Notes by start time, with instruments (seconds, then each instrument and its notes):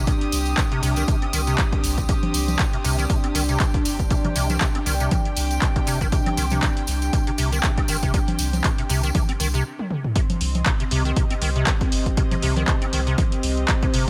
Already playing: string section C4 G4 D#6, ambient pad D4
0.07 acid bass C3, kick, closed hi-hat, tambourine
0.21 closed hi-hat
0.32 sub bass C2, open hi-hat, tambourine
0.45 closed hi-hat, tambourine
0.57 acid bass C3, kick, clap, closed hi-hat, tambourine
0.72 acid bass C3, closed hi-hat
0.83 sub bass C2, acid bass C3, open hi-hat, tambourine
0.96 acid bass D#3, closed hi-hat, tambourine
1.08 acid bass C3, kick, closed hi-hat, tambourine
1.22 acid bass C4, closed hi-hat
1.33 sub bass C2, acid bass D#3, open hi-hat, tambourine
1.47 acid bass C3, closed hi-hat, tambourine
1.58 kick, clap, closed hi-hat, tambourine
1.73 kick, closed hi-hat
1.84 sub bass C2, open hi-hat, tambourine
1.98 kick, closed hi-hat, tambourine
2.09 acid bass C3, ambient pad D4, kick, closed hi-hat, tambourine
2.23 closed hi-hat, low conga
2.34 sub bass C2, open hi-hat, tambourine
2.48 closed hi-hat, tambourine, low conga
2.59 acid bass C3, kick, clap, closed hi-hat, tambourine
2.73 acid bass C3, closed hi-hat
2.84 sub bass C2, acid bass C3, open hi-hat, tambourine
2.99 acid bass D#3, closed hi-hat, tambourine
3.10 acid bass C3, kick, closed hi-hat, tambourine
3.24 acid bass C4, closed hi-hat
3.35 sub bass C2, acid bass D#3, open hi-hat, tambourine
3.49 acid bass C3, string section G5, closed hi-hat, tambourine
3.60 acid bass C3, kick, clap, closed hi-hat, tambourine
3.74 kick, closed hi-hat
3.85 sub bass G1, open hi-hat, tambourine
3.99 kick, closed hi-hat, tambourine
4.10 acid bass C3, kick, closed hi-hat, tambourine
4.25 acid bass C3, closed hi-hat, low conga
4.36 sub bass C2, acid bass C3, open hi-hat, tambourine
4.50 acid bass D#3, closed hi-hat, tambourine, low conga
4.61 acid bass C3, kick, clap, closed hi-hat, tambourine
4.75 acid bass C4, closed hi-hat
4.86 sub bass C2, acid bass D#3, open hi-hat, tambourine
5.00 acid bass C3, closed hi-hat, tambourine
5.11 kick, closed hi-hat, tambourine, low conga
5.25 closed hi-hat
5.37 sub bass C2, open hi-hat, tambourine
5.51 closed hi-hat, tambourine
5.62 acid bass C3, kick, clap, closed hi-hat, tambourine
5.76 acid bass C3, kick, closed hi-hat
5.87 sub bass G1, acid bass C3, open hi-hat, tambourine
6.01 acid bass D#3, kick, closed hi-hat, tambourine
6.12 acid bass C3, kick, closed hi-hat, tambourine
6.26 acid bass C4, closed hi-hat, low conga
6.37 sub bass C2, acid bass D#3, open hi-hat, tambourine
6.50 acid bass C3, closed hi-hat, tambourine, low conga
6.63 kick, clap, closed hi-hat, tambourine
6.77 closed hi-hat
6.87 sub bass C2, open hi-hat, tambourine
7.02 closed hi-hat, tambourine
7.13 acid bass C3, kick, closed hi-hat, tambourine
7.27 acid bass C3, closed hi-hat
7.38 sub bass C2, acid bass C3, open hi-hat, tambourine
7.52 acid bass D#3, closed hi-hat, tambourine
7.63 acid bass C3, kick, clap, closed hi-hat, tambourine
7.78 acid bass C4, kick, closed hi-hat
7.88 sub bass G1, acid bass D#3, open hi-hat, tambourine
8.03 acid bass C3, kick, closed hi-hat, tambourine
8.14 acid bass C3, kick, closed hi-hat, tambourine
8.28 closed hi-hat, low conga
8.39 sub bass C2, open hi-hat, tambourine
8.53 closed hi-hat, tambourine, low conga
8.64 acid bass C3, kick, clap, closed hi-hat, tambourine
8.78 acid bass C3, closed hi-hat
8.89 sub bass C2, acid bass C3, open hi-hat, tambourine
9.03 acid bass D#3, closed hi-hat, tambourine
9.15 acid bass C3, kick, closed hi-hat, tambourine, low conga
9.29 acid bass C4, closed hi-hat
9.40 sub bass C2, acid bass D#3, open hi-hat, tambourine
9.54 acid bass C3, closed hi-hat, tambourine
9.79 high tom
9.90 mid tom
10.04 mid tom
10.16 acid bass C3, ambient pad C4, string section C4, kick, closed hi-hat
10.30 closed hi-hat, low conga
10.41 sub bass C2, open hi-hat
10.49 string section D#5
10.55 closed hi-hat, low conga
10.66 acid bass C3, kick, clap, closed hi-hat
10.80 acid bass C3, closed hi-hat
10.91 sub bass C2, acid bass C3, open hi-hat
11.01 string section G4
11.05 acid bass D#3, closed hi-hat
11.16 acid bass C3, kick, closed hi-hat
11.30 acid bass C4, closed hi-hat
11.42 sub bass C2, acid bass D#3, open hi-hat
11.56 acid bass C3, closed hi-hat
11.67 acid bass C3, kick, clap, closed hi-hat
11.81 kick, closed hi-hat
11.92 sub bass G1, open hi-hat
12.06 kick, closed hi-hat
12.17 acid bass C3, kick, closed hi-hat
12.31 acid bass C3, closed hi-hat, low conga
12.42 sub bass C2, acid bass C3, open hi-hat
12.56 acid bass D#3, closed hi-hat, low conga
12.67 acid bass C3, kick, clap, closed hi-hat
12.82 acid bass C4, closed hi-hat
12.93 sub bass C2, acid bass D#3, open hi-hat
13.07 acid bass C3, closed hi-hat
13.18 acid bass C3, kick, closed hi-hat, low conga
13.32 closed hi-hat
13.43 sub bass C2, open hi-hat
13.57 closed hi-hat
13.68 acid bass C3, kick, clap, closed hi-hat
13.82 acid bass C3, kick, closed hi-hat
13.94 sub bass G1, acid bass C3, open hi-hat